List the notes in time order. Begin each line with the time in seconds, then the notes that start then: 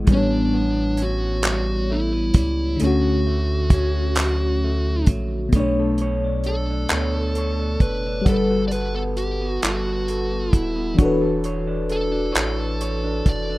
Already playing: G#3 B3
0.04 A2 G3 C#4, kick, closed hi-hat
0.09 A1 B3 D4
0.15 C#5
0.53 B3
0.97 C#4, closed hi-hat
1.03 F#4
1.43 G3, clap, closed hi-hat
1.90 A3 E4
2.13 B3
2.34 C#2 G3, kick, closed hi-hat
2.76 D3 A3, closed hi-hat
2.81 D2 C#4 F#4
2.87 F#4
3.27 A3
3.70 C#4, kick, closed hi-hat
4.15 F#3, clap, closed hi-hat
4.64 A3
5.06 A#1 F#3, kick, closed hi-hat
5.49 B2 A3, kick, closed hi-hat
5.54 B1 B3 D4 C#5
5.60 C#5
5.80 A4
5.98 C#5, closed hi-hat
6.24 D4
6.44 A4, closed hi-hat
6.48 A4
6.70 D4
6.89 D2 B3 C#5, clap, closed hi-hat
7.16 A4
7.35 C#5, closed hi-hat
7.59 D4
7.80 F#1 A4 B4, kick, closed hi-hat
8.06 D4
8.21 G3 F#5
8.26 G1 G3 A4, kick, closed hi-hat
8.32 B4
8.51 F#4
8.68 D5, closed hi-hat
8.72 A4 B4
8.94 B3 A4
9.17 F#4 G4, closed hi-hat
9.41 B3
9.62 G1 G3 F#4 A4, clap, closed hi-hat
9.85 F#4
10.08 A4, closed hi-hat
10.32 B3
10.53 D#1 E4 F#4, kick, closed hi-hat
10.76 B3
10.95 E3 D4, kick, closed hi-hat
10.99 E1 F#4 A4 C#5
11.05 B4
11.22 A4
11.44 C#5, closed hi-hat
11.67 D4
11.89 A4, closed hi-hat
12.12 D4
12.32 A1 E3 C#5, closed hi-hat
12.36 clap
12.56 A4
12.81 C#5, closed hi-hat
13.04 D4
13.26 F1 A4 D5, kick, closed hi-hat
13.50 D4